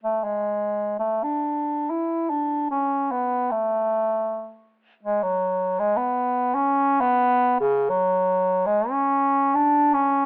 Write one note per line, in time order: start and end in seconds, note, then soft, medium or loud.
0.04 0.25 A3 medium
0.24 0.98 G#3 soft
0.99 1.25 A3 medium
1.23 1.92 D4 medium
1.90 2.31 E4 medium
2.30 2.70 D4 medium
2.71 3.13 C#4 medium
3.11 3.53 B3 medium
3.51 4.65 A3 medium
5.03 5.24 G#3 medium
5.23 5.81 F#3 medium
5.79 5.98 G#3 medium
5.97 6.56 B3 medium
6.55 7.02 C#4 medium
7.01 7.58 B3 medium
7.60 7.91 C#3 medium
7.90 8.68 F#3 medium
8.66 8.92 G#3 medium
8.90 9.56 C#4 medium
9.55 9.95 D4 medium
9.94 10.26 C#4 medium